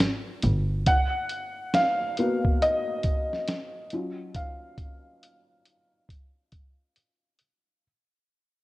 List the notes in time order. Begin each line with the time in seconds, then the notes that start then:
Already playing: F#3 C#4 F4
0.00 snare
0.42 G1, closed hi-hat
0.86 F#5, kick, closed hi-hat
1.29 closed hi-hat
1.74 F5, snare, closed hi-hat
2.17 A#3 B3 F#4, closed hi-hat
2.45 kick
2.62 D#5, closed hi-hat
3.03 kick, closed hi-hat
3.33 snare
3.48 snare, closed hi-hat
3.90 F#3 C#4 F4, closed hi-hat
4.35 F5, kick, closed hi-hat
4.78 kick, closed hi-hat
5.23 closed hi-hat
5.65 closed hi-hat
6.09 kick, closed hi-hat
6.52 kick, closed hi-hat
6.96 closed hi-hat
7.39 closed hi-hat